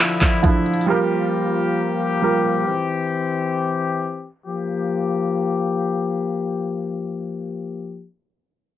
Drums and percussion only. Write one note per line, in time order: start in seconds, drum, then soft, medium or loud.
0.10 closed hi-hat soft
0.21 kick medium
0.21 clap medium
0.21 closed hi-hat medium
0.33 closed hi-hat medium
0.43 kick medium
0.43 closed hi-hat medium
0.66 closed hi-hat medium
0.73 closed hi-hat medium
0.81 closed hi-hat medium